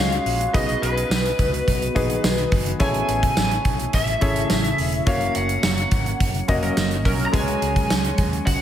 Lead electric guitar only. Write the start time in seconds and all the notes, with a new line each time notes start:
Already playing: F5
0.54 D#5
0.82 B4
2.81 G#5
3.95 E5
5.08 F5
5.36 F#5
7.26 A#5
7.34 G#5
8.46 F#5